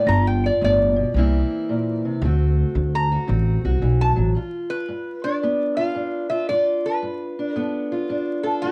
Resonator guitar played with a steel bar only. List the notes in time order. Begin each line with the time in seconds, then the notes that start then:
0.08 A#5
0.27 G5
0.46 D5
0.64 D5
2.95 A#5
4.01 A5
4.70 B4
5.24 D5
5.77 F5
6.30 E5
6.49 D5
6.86 B4
7.57 A4
8.43 A4
8.62 G4